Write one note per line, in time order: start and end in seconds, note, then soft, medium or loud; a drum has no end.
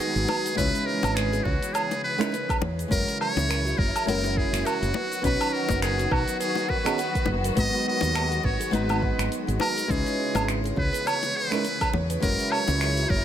0.00 0.56 D#3 medium
0.00 0.54 F#3 medium
0.00 0.54 G#3 medium
0.00 2.88 G#3 medium
0.00 0.54 B3 medium
0.00 0.55 D#4 medium
0.00 0.54 F#4 medium
0.00 0.55 F#4 medium
0.00 0.14 G#4 medium
0.00 0.57 G#4 loud
0.00 0.56 A#5 loud
0.00 closed hi-hat medium
0.00 cabasa medium
0.15 0.25 G#1 medium
0.15 0.27 F#4 medium
0.15 closed hi-hat soft
0.15 cabasa soft
0.29 0.43 B4 medium
0.29 high bongo medium
0.29 low woodblock medium
0.46 closed hi-hat soft
0.46 cabasa medium
0.55 0.70 C#2 loud
0.55 4.91 C#3 medium
0.55 4.91 E3 medium
0.55 2.15 G#3 medium
0.55 2.88 B3 medium
0.55 2.15 C#4 medium
0.55 2.15 D#4 medium
0.55 2.16 E4 medium
0.55 0.88 B4 loud
0.55 0.73 C#5 medium
0.55 kick loud
0.55 closed hi-hat medium
0.55 cabasa medium
0.59 2.17 B4 loud
0.75 closed hi-hat soft
0.75 cabasa soft
0.86 1.17 A#4 loud
1.03 1.39 G#1 medium
1.03 closed hi-hat soft
1.03 high bongo loud
1.03 cabasa medium
1.03 low woodblock medium
1.15 1.45 G#4 medium
1.15 1.31 B4 medium
1.15 finger snap medium
1.15 closed hi-hat medium
1.15 cabasa medium
1.33 1.44 G#4 medium
1.33 closed hi-hat soft
1.33 cabasa soft
1.44 1.57 C#2 medium
1.44 1.75 F#4 medium
1.44 1.60 C#5 medium
1.44 kick loud
1.63 closed hi-hat soft
1.63 cabasa medium
1.73 2.03 G#4 medium
1.73 1.89 C#5 medium
1.73 closed hi-hat medium
1.73 cabasa medium
1.73 low woodblock medium
1.91 closed hi-hat soft
1.91 high bongo medium
1.91 cabasa soft
2.04 2.60 B4 medium
2.18 2.32 G#3 loud
2.18 2.32 C#4 medium
2.18 2.32 D#4 medium
2.18 2.33 E4 loud
2.18 2.33 A#4 loud
2.18 finger snap medium
2.18 closed hi-hat soft
2.18 cabasa medium
2.32 2.47 B4 medium
2.32 closed hi-hat medium
2.32 cabasa medium
2.49 2.60 G#4 medium
2.49 kick loud
2.49 closed hi-hat soft
2.49 cabasa soft
2.49 low woodblock medium
2.61 2.84 E2 medium
2.61 2.76 C#5 medium
2.61 high bongo loud
2.79 closed hi-hat soft
2.79 cabasa medium
2.88 3.03 F#1 medium
2.88 9.86 F#3 medium
2.88 4.03 G#3 medium
2.88 4.03 C#4 medium
2.88 4.04 E4 medium
2.88 4.93 E4 medium
2.88 4.04 F#4 medium
2.88 3.18 A#4 loud
2.88 3.05 C#5 medium
2.88 kick loud
2.88 closed hi-hat medium
2.92 4.05 A#4 medium
2.92 cabasa medium
3.08 closed hi-hat soft
3.08 cabasa soft
3.21 3.80 C#5 loud
3.21 low woodblock medium
3.36 3.72 C#2 medium
3.36 closed hi-hat soft
3.36 high bongo medium
3.36 cabasa medium
3.49 3.64 A#4 medium
3.49 finger snap medium
3.49 closed hi-hat medium
3.49 cabasa medium
3.65 3.77 F#4 medium
3.65 closed hi-hat soft
3.65 cabasa soft
3.78 3.90 F#1 loud
3.78 4.07 A#4 loud
3.78 3.93 C#5 medium
3.78 kick loud
3.96 closed hi-hat soft
3.96 cabasa medium
3.96 low woodblock medium
4.06 4.46 F#1 medium
4.06 4.92 G#3 medium
4.06 4.93 C#4 medium
4.06 4.93 E4 medium
4.06 4.94 F#4 medium
4.06 4.39 A#4 loud
4.06 4.94 A#4 loud
4.06 4.22 C#5 medium
4.06 closed hi-hat medium
4.06 cabasa medium
4.24 closed hi-hat soft
4.24 high bongo medium
4.24 cabasa soft
4.37 4.67 G#4 medium
4.37 kick loud
4.52 4.62 F#1 medium
4.52 finger snap medium
4.52 closed hi-hat soft
4.52 cabasa medium
4.65 5.24 F#4 loud
4.65 4.80 A#4 medium
4.65 closed hi-hat medium
4.65 cabasa medium
4.65 low woodblock medium
4.82 4.91 F#1 medium
4.82 4.93 F#4 medium
4.82 closed hi-hat soft
4.82 cabasa soft
4.94 9.86 D#3 medium
4.94 9.86 B3 medium
4.94 9.86 F#4 medium
4.94 5.09 B4 medium
4.94 high bongo loud
5.12 closed hi-hat soft
5.12 cabasa medium
5.21 5.36 B1 medium
5.21 6.81 B3 medium
5.21 6.81 C#4 medium
5.21 6.82 D#4 medium
5.21 6.82 F#4 medium
5.21 5.38 B4 medium
5.21 5.54 B4 loud
5.21 kick loud
5.21 closed hi-hat medium
5.21 cabasa medium
5.26 6.83 A#5 loud
5.41 closed hi-hat soft
5.41 cabasa soft
5.41 low woodblock medium
5.53 5.82 A#4 medium
5.69 6.05 F#1 medium
5.69 kick medium
5.69 closed hi-hat soft
5.69 high bongo medium
5.69 cabasa medium
5.82 6.14 G#4 medium
5.82 5.97 A#4 medium
5.82 finger snap medium
5.82 closed hi-hat medium
5.82 cabasa medium
5.99 6.10 F#4 medium
5.99 closed hi-hat soft
5.99 cabasa soft
6.11 6.23 B1 medium
6.11 6.40 F#4 medium
6.11 6.26 B4 medium
6.11 kick loud
6.11 low woodblock medium
6.28 closed hi-hat soft
6.28 cabasa medium
6.40 6.71 G#4 medium
6.40 6.55 B4 medium
6.40 closed hi-hat medium
6.40 cabasa medium
6.55 closed hi-hat soft
6.55 high bongo medium
6.55 cabasa soft
6.69 6.78 A#4 medium
6.69 7.30 B4 medium
6.69 kick medium
6.85 6.98 B3 medium
6.85 6.98 C#4 medium
6.85 6.98 D#4 medium
6.85 6.99 F#4 medium
6.85 6.99 G#4 loud
6.85 finger snap medium
6.85 closed hi-hat soft
6.85 cabasa medium
6.85 low woodblock medium
6.98 7.13 F#5 loud
6.98 closed hi-hat medium
6.98 cabasa medium
7.15 7.22 B4 medium
7.15 kick loud
7.15 closed hi-hat soft
7.15 cabasa soft
7.26 7.50 F#1 medium
7.26 7.36 B4 medium
7.26 high bongo medium
7.44 7.56 A#4 medium
7.44 closed hi-hat soft
7.44 cabasa medium
7.55 7.68 G#1 loud
7.55 8.69 G#3 medium
7.55 12.19 G#3 medium
7.55 8.70 B3 medium
7.55 8.70 D#4 medium
7.55 8.71 F#4 medium
7.55 7.72 B4 medium
7.55 kick loud
7.55 closed hi-hat medium
7.55 cabasa medium
7.59 7.85 D#5 loud
7.59 8.71 A#5 medium
7.73 closed hi-hat soft
7.73 cabasa soft
7.88 8.46 D#5 loud
8.01 8.38 D#2 medium
8.01 closed hi-hat soft
8.01 high bongo medium
8.01 cabasa medium
8.15 finger snap medium
8.15 closed hi-hat medium
8.15 cabasa medium
8.15 low woodblock medium
8.31 8.43 F#4 medium
8.31 closed hi-hat soft
8.31 cabasa soft
8.44 8.56 G#1 medium
8.44 8.59 B4 medium
8.44 8.76 C#5 medium
8.44 kick loud
8.60 8.72 G#4 medium
8.60 closed hi-hat soft
8.60 cabasa medium
8.71 9.11 G#1 loud
8.71 9.86 G#3 medium
8.71 9.86 B3 medium
8.71 9.87 D#4 medium
8.71 9.87 F#4 medium
8.71 8.88 B4 medium
8.71 9.32 B4 medium
8.71 9.87 A#5 loud
8.71 closed hi-hat medium
8.71 cabasa medium
8.89 closed hi-hat soft
8.89 high bongo medium
8.89 cabasa soft
8.89 low woodblock medium
9.02 kick loud
9.18 9.28 G#1 medium
9.18 finger snap medium
9.18 closed hi-hat soft
9.18 cabasa medium
9.32 closed hi-hat medium
9.32 cabasa medium
9.47 9.57 G#1 medium
9.47 9.59 F#4 medium
9.47 closed hi-hat soft
9.47 cabasa soft
9.60 9.93 A#4 loud
9.60 9.75 B4 medium
9.60 high bongo medium
9.60 low woodblock medium
9.77 9.88 G#4 medium
9.77 closed hi-hat soft
9.77 cabasa medium
9.88 10.02 C#2 loud
9.88 13.25 C#3 medium
9.88 13.25 E3 medium
9.88 11.47 G#3 medium
9.88 12.21 B3 medium
9.88 11.47 C#4 medium
9.88 11.48 D#4 medium
9.88 11.48 E4 medium
9.88 10.49 G#4 loud
9.88 11.49 B4 loud
9.88 10.04 C#5 medium
9.88 kick loud
9.88 closed hi-hat medium
9.88 cabasa medium
10.06 closed hi-hat soft
10.06 cabasa soft
10.35 10.71 G#1 medium
10.35 closed hi-hat soft
10.35 high bongo medium
10.35 cabasa medium
10.35 low woodblock medium
10.48 finger snap medium
10.48 closed hi-hat medium
10.48 cabasa soft
10.64 10.76 G#4 medium
10.64 closed hi-hat soft
10.64 cabasa soft
10.76 10.89 C#2 medium
10.76 11.08 B4 loud
10.76 10.91 C#5 medium
10.76 kick loud
10.93 11.05 B4 medium
10.93 closed hi-hat soft
10.93 cabasa medium
11.06 11.21 C#5 medium
11.06 11.38 C#5 loud
11.06 closed hi-hat medium
11.06 cabasa medium
11.06 low woodblock medium
11.23 closed hi-hat soft
11.23 high bongo medium
11.23 cabasa soft
11.37 11.94 B4 loud
11.51 11.64 G#3 loud
11.51 11.64 C#4 loud
11.51 11.64 D#4 medium
11.51 11.65 E4 medium
11.51 11.65 A#4 loud
11.51 finger snap medium
11.51 closed hi-hat soft
11.51 cabasa medium
11.65 closed hi-hat medium
11.65 cabasa medium
11.81 11.92 G#4 medium
11.81 kick medium
11.81 closed hi-hat soft
11.81 cabasa soft
11.81 low woodblock medium
11.93 12.15 E2 medium
11.93 12.08 C#5 medium
11.93 high bongo medium
12.10 12.22 B4 medium
12.10 closed hi-hat soft
12.10 cabasa medium
12.20 12.35 F#1 medium
12.20 13.25 F#3 medium
12.20 13.25 G#3 medium
12.20 13.25 C#4 medium
12.20 13.25 E4 medium
12.20 13.25 F#4 medium
12.20 12.53 A#4 loud
12.20 13.25 A#4 medium
12.20 12.38 C#5 medium
12.20 kick loud
12.20 closed hi-hat medium
12.20 cabasa medium
12.39 closed hi-hat soft
12.39 cabasa soft
12.51 13.11 C#5 loud
12.51 low woodblock medium
12.68 13.04 C#2 medium
12.68 closed hi-hat soft
12.68 high bongo medium
12.68 cabasa medium
12.81 finger snap medium
12.81 closed hi-hat medium
12.81 cabasa soft
12.97 13.09 F#4 medium
12.97 closed hi-hat soft
12.97 cabasa soft
13.10 13.22 F#1 medium
13.10 13.25 A#4 loud
13.10 13.25 C#5 medium
13.10 kick loud